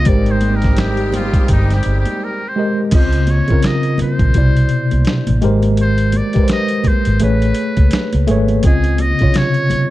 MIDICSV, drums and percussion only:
0, 0, Header, 1, 2, 480
1, 0, Start_track
1, 0, Tempo, 714286
1, 42, Time_signature, 4, 2, 24, 8
1, 6654, End_track
2, 0, Start_track
2, 0, Title_t, "Drums"
2, 35, Note_on_c, 9, 42, 79
2, 41, Note_on_c, 9, 62, 30
2, 43, Note_on_c, 9, 36, 114
2, 102, Note_off_c, 9, 42, 0
2, 108, Note_off_c, 9, 62, 0
2, 110, Note_off_c, 9, 36, 0
2, 177, Note_on_c, 9, 42, 47
2, 244, Note_off_c, 9, 42, 0
2, 274, Note_on_c, 9, 42, 60
2, 280, Note_on_c, 9, 62, 31
2, 280, Note_on_c, 9, 63, 63
2, 341, Note_off_c, 9, 42, 0
2, 347, Note_off_c, 9, 62, 0
2, 347, Note_off_c, 9, 63, 0
2, 416, Note_on_c, 9, 42, 42
2, 431, Note_on_c, 9, 38, 32
2, 434, Note_on_c, 9, 36, 81
2, 483, Note_off_c, 9, 42, 0
2, 499, Note_off_c, 9, 38, 0
2, 501, Note_off_c, 9, 36, 0
2, 515, Note_on_c, 9, 42, 94
2, 521, Note_on_c, 9, 62, 31
2, 526, Note_on_c, 9, 38, 103
2, 528, Note_on_c, 9, 26, 91
2, 582, Note_off_c, 9, 42, 0
2, 588, Note_off_c, 9, 62, 0
2, 593, Note_off_c, 9, 38, 0
2, 595, Note_off_c, 9, 26, 0
2, 654, Note_on_c, 9, 42, 45
2, 721, Note_off_c, 9, 42, 0
2, 756, Note_on_c, 9, 62, 28
2, 756, Note_on_c, 9, 63, 68
2, 756, Note_on_c, 9, 64, 69
2, 764, Note_on_c, 9, 42, 73
2, 823, Note_off_c, 9, 62, 0
2, 823, Note_off_c, 9, 63, 0
2, 823, Note_off_c, 9, 64, 0
2, 831, Note_off_c, 9, 42, 0
2, 897, Note_on_c, 9, 36, 110
2, 898, Note_on_c, 9, 42, 50
2, 964, Note_off_c, 9, 36, 0
2, 966, Note_off_c, 9, 42, 0
2, 997, Note_on_c, 9, 42, 95
2, 1002, Note_on_c, 9, 36, 92
2, 1064, Note_off_c, 9, 42, 0
2, 1069, Note_off_c, 9, 36, 0
2, 1145, Note_on_c, 9, 42, 45
2, 1151, Note_on_c, 9, 38, 34
2, 1212, Note_off_c, 9, 42, 0
2, 1218, Note_off_c, 9, 38, 0
2, 1229, Note_on_c, 9, 42, 66
2, 1248, Note_on_c, 9, 62, 28
2, 1296, Note_off_c, 9, 42, 0
2, 1315, Note_off_c, 9, 62, 0
2, 1380, Note_on_c, 9, 42, 46
2, 1383, Note_on_c, 9, 63, 63
2, 1447, Note_off_c, 9, 42, 0
2, 1450, Note_off_c, 9, 63, 0
2, 1958, Note_on_c, 9, 42, 96
2, 1962, Note_on_c, 9, 49, 100
2, 1965, Note_on_c, 9, 36, 113
2, 2025, Note_off_c, 9, 42, 0
2, 2029, Note_off_c, 9, 49, 0
2, 2032, Note_off_c, 9, 36, 0
2, 2099, Note_on_c, 9, 42, 45
2, 2167, Note_off_c, 9, 42, 0
2, 2197, Note_on_c, 9, 42, 64
2, 2199, Note_on_c, 9, 62, 31
2, 2199, Note_on_c, 9, 63, 68
2, 2264, Note_off_c, 9, 42, 0
2, 2266, Note_off_c, 9, 62, 0
2, 2266, Note_off_c, 9, 63, 0
2, 2337, Note_on_c, 9, 42, 42
2, 2355, Note_on_c, 9, 36, 87
2, 2404, Note_off_c, 9, 42, 0
2, 2422, Note_off_c, 9, 36, 0
2, 2436, Note_on_c, 9, 42, 84
2, 2447, Note_on_c, 9, 38, 107
2, 2449, Note_on_c, 9, 26, 91
2, 2503, Note_off_c, 9, 42, 0
2, 2515, Note_off_c, 9, 38, 0
2, 2516, Note_off_c, 9, 26, 0
2, 2575, Note_on_c, 9, 42, 44
2, 2643, Note_off_c, 9, 42, 0
2, 2674, Note_on_c, 9, 62, 31
2, 2674, Note_on_c, 9, 63, 72
2, 2674, Note_on_c, 9, 64, 68
2, 2682, Note_on_c, 9, 42, 67
2, 2742, Note_off_c, 9, 62, 0
2, 2742, Note_off_c, 9, 63, 0
2, 2742, Note_off_c, 9, 64, 0
2, 2750, Note_off_c, 9, 42, 0
2, 2818, Note_on_c, 9, 36, 111
2, 2819, Note_on_c, 9, 42, 47
2, 2822, Note_on_c, 9, 64, 67
2, 2885, Note_off_c, 9, 36, 0
2, 2886, Note_off_c, 9, 42, 0
2, 2890, Note_off_c, 9, 64, 0
2, 2917, Note_on_c, 9, 42, 104
2, 2922, Note_on_c, 9, 62, 34
2, 2923, Note_on_c, 9, 36, 91
2, 2984, Note_off_c, 9, 42, 0
2, 2989, Note_off_c, 9, 62, 0
2, 2990, Note_off_c, 9, 36, 0
2, 3068, Note_on_c, 9, 42, 52
2, 3135, Note_off_c, 9, 42, 0
2, 3150, Note_on_c, 9, 42, 67
2, 3218, Note_off_c, 9, 42, 0
2, 3301, Note_on_c, 9, 42, 45
2, 3302, Note_on_c, 9, 63, 69
2, 3368, Note_off_c, 9, 42, 0
2, 3370, Note_off_c, 9, 63, 0
2, 3392, Note_on_c, 9, 42, 77
2, 3409, Note_on_c, 9, 38, 107
2, 3410, Note_on_c, 9, 26, 84
2, 3459, Note_off_c, 9, 42, 0
2, 3476, Note_off_c, 9, 38, 0
2, 3478, Note_off_c, 9, 26, 0
2, 3539, Note_on_c, 9, 63, 83
2, 3541, Note_on_c, 9, 42, 56
2, 3606, Note_off_c, 9, 63, 0
2, 3608, Note_off_c, 9, 42, 0
2, 3637, Note_on_c, 9, 64, 65
2, 3642, Note_on_c, 9, 42, 76
2, 3704, Note_off_c, 9, 64, 0
2, 3709, Note_off_c, 9, 42, 0
2, 3777, Note_on_c, 9, 63, 60
2, 3781, Note_on_c, 9, 42, 50
2, 3844, Note_off_c, 9, 63, 0
2, 3848, Note_off_c, 9, 42, 0
2, 3877, Note_on_c, 9, 62, 31
2, 3880, Note_on_c, 9, 42, 95
2, 3944, Note_off_c, 9, 62, 0
2, 3947, Note_off_c, 9, 42, 0
2, 4018, Note_on_c, 9, 42, 48
2, 4085, Note_off_c, 9, 42, 0
2, 4115, Note_on_c, 9, 42, 62
2, 4120, Note_on_c, 9, 62, 34
2, 4120, Note_on_c, 9, 63, 65
2, 4182, Note_off_c, 9, 42, 0
2, 4187, Note_off_c, 9, 62, 0
2, 4187, Note_off_c, 9, 63, 0
2, 4255, Note_on_c, 9, 42, 44
2, 4274, Note_on_c, 9, 36, 88
2, 4322, Note_off_c, 9, 42, 0
2, 4342, Note_off_c, 9, 36, 0
2, 4354, Note_on_c, 9, 42, 89
2, 4365, Note_on_c, 9, 38, 106
2, 4366, Note_on_c, 9, 26, 91
2, 4421, Note_off_c, 9, 42, 0
2, 4432, Note_off_c, 9, 38, 0
2, 4434, Note_off_c, 9, 26, 0
2, 4492, Note_on_c, 9, 42, 46
2, 4559, Note_off_c, 9, 42, 0
2, 4595, Note_on_c, 9, 62, 36
2, 4595, Note_on_c, 9, 63, 70
2, 4595, Note_on_c, 9, 64, 67
2, 4600, Note_on_c, 9, 42, 70
2, 4601, Note_on_c, 9, 36, 91
2, 4662, Note_off_c, 9, 62, 0
2, 4662, Note_off_c, 9, 63, 0
2, 4662, Note_off_c, 9, 64, 0
2, 4667, Note_off_c, 9, 42, 0
2, 4668, Note_off_c, 9, 36, 0
2, 4738, Note_on_c, 9, 42, 51
2, 4745, Note_on_c, 9, 64, 58
2, 4805, Note_off_c, 9, 42, 0
2, 4812, Note_off_c, 9, 64, 0
2, 4835, Note_on_c, 9, 42, 94
2, 4847, Note_on_c, 9, 62, 33
2, 4903, Note_off_c, 9, 42, 0
2, 4914, Note_off_c, 9, 62, 0
2, 4986, Note_on_c, 9, 42, 53
2, 5053, Note_off_c, 9, 42, 0
2, 5070, Note_on_c, 9, 42, 70
2, 5137, Note_off_c, 9, 42, 0
2, 5220, Note_on_c, 9, 42, 45
2, 5223, Note_on_c, 9, 36, 92
2, 5225, Note_on_c, 9, 63, 70
2, 5287, Note_off_c, 9, 42, 0
2, 5290, Note_off_c, 9, 36, 0
2, 5292, Note_off_c, 9, 63, 0
2, 5314, Note_on_c, 9, 42, 77
2, 5329, Note_on_c, 9, 62, 26
2, 5331, Note_on_c, 9, 38, 102
2, 5333, Note_on_c, 9, 26, 85
2, 5381, Note_off_c, 9, 42, 0
2, 5396, Note_off_c, 9, 62, 0
2, 5398, Note_off_c, 9, 38, 0
2, 5400, Note_off_c, 9, 26, 0
2, 5461, Note_on_c, 9, 42, 59
2, 5462, Note_on_c, 9, 63, 74
2, 5528, Note_off_c, 9, 42, 0
2, 5529, Note_off_c, 9, 63, 0
2, 5561, Note_on_c, 9, 42, 67
2, 5563, Note_on_c, 9, 62, 29
2, 5563, Note_on_c, 9, 64, 63
2, 5628, Note_off_c, 9, 42, 0
2, 5631, Note_off_c, 9, 62, 0
2, 5631, Note_off_c, 9, 64, 0
2, 5699, Note_on_c, 9, 63, 71
2, 5702, Note_on_c, 9, 42, 49
2, 5766, Note_off_c, 9, 63, 0
2, 5769, Note_off_c, 9, 42, 0
2, 5798, Note_on_c, 9, 42, 96
2, 5801, Note_on_c, 9, 62, 32
2, 5805, Note_on_c, 9, 36, 107
2, 5865, Note_off_c, 9, 42, 0
2, 5868, Note_off_c, 9, 62, 0
2, 5872, Note_off_c, 9, 36, 0
2, 5939, Note_on_c, 9, 42, 51
2, 6007, Note_off_c, 9, 42, 0
2, 6037, Note_on_c, 9, 42, 61
2, 6041, Note_on_c, 9, 63, 68
2, 6104, Note_off_c, 9, 42, 0
2, 6108, Note_off_c, 9, 63, 0
2, 6175, Note_on_c, 9, 42, 46
2, 6194, Note_on_c, 9, 36, 83
2, 6243, Note_off_c, 9, 42, 0
2, 6261, Note_off_c, 9, 36, 0
2, 6276, Note_on_c, 9, 42, 92
2, 6282, Note_on_c, 9, 62, 34
2, 6288, Note_on_c, 9, 38, 126
2, 6289, Note_on_c, 9, 26, 87
2, 6344, Note_off_c, 9, 42, 0
2, 6349, Note_off_c, 9, 62, 0
2, 6355, Note_off_c, 9, 38, 0
2, 6357, Note_off_c, 9, 26, 0
2, 6413, Note_on_c, 9, 42, 44
2, 6480, Note_off_c, 9, 42, 0
2, 6518, Note_on_c, 9, 62, 31
2, 6518, Note_on_c, 9, 63, 70
2, 6518, Note_on_c, 9, 64, 67
2, 6523, Note_on_c, 9, 42, 71
2, 6585, Note_off_c, 9, 62, 0
2, 6585, Note_off_c, 9, 63, 0
2, 6585, Note_off_c, 9, 64, 0
2, 6590, Note_off_c, 9, 42, 0
2, 6654, End_track
0, 0, End_of_file